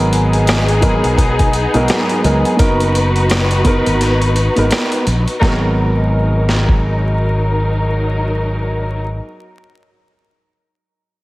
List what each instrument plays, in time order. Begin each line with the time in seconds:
Already playing: fretless electric bass G#1, upright piano G#2 F#3 B3 A#4, string section B3 D#4 G#4
0.13 closed hi-hat
0.33 closed hi-hat
0.47 cross-stick, snare, closed hi-hat
0.68 closed hi-hat
0.80 upright piano G#2 F#3 B3 A#4, kick, closed hi-hat
1.04 fretless electric bass B1, closed hi-hat
1.18 kick, closed hi-hat
1.39 kick, closed hi-hat
1.53 closed hi-hat
1.73 fretless electric bass B1, upright piano G#2 F#3 B3 A#4, closed hi-hat
1.88 cross-stick, snare, closed hi-hat
2.09 closed hi-hat
2.23 fretless electric bass C#2, upright piano G#2 F#3 B3 A#4, closed hi-hat
2.45 closed hi-hat
2.56 fretless electric bass F#1, upright piano B3 D#4 A#4, string section D#4 F#4 B4, kick, closed hi-hat
2.80 closed hi-hat
2.95 closed hi-hat
3.16 closed hi-hat
3.30 cross-stick, snare, closed hi-hat
3.51 closed hi-hat
3.64 upright piano B3 D#4 A#4, kick, closed hi-hat
3.86 fretless electric bass G#1, closed hi-hat
4.01 snare, closed hi-hat
4.22 closed hi-hat
4.36 closed hi-hat
4.56 fretless electric bass G#1, upright piano B3 D#4 A#4, closed hi-hat
4.71 cross-stick, snare, closed hi-hat
4.92 closed hi-hat
5.07 fretless electric bass A#1, closed hi-hat
5.28 closed hi-hat
5.41 fretless electric bass G#1, upright piano G#2 F#3 B3 A#4, string section F#3 D#4 A#4, kick, snare
6.49 snare
6.69 kick